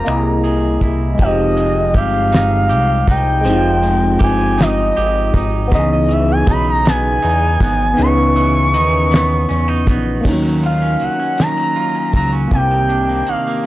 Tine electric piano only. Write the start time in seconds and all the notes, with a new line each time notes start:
0.04 A#3 E4 D#5
0.10 G4
0.17 G#4
1.15 G#3 C4
1.22 D#4 G4
3.41 G#3
3.45 C4
3.49 D#4 F4
5.68 B3
5.72 D#4
5.76 E3 G#4
7.94 B3
7.98 C#4 D#4
8.06 B4
10.21 A#3 C#4
10.29 F#3 D#4
12.47 A#3 C4
12.59 G4